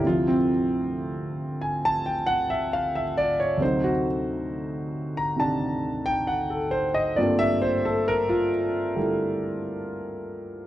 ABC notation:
X:1
M:4/4
L:1/16
Q:"Swing" 1/4=67
K:Dm
V:1 name="Grand piano"
F C z4 z _a =a g _g e f e d _d | c ^F z4 z b a3 g ^f A c _e | d e c A B F z8 z2 |]
V:2 name="Grand piano" clef=bass
[D,,C,F,E]16 | [D,,C,^F,_E]8 [C,_E,D]8 | [G,,D,A,B,CF]8 [D,G,A,E]8 |]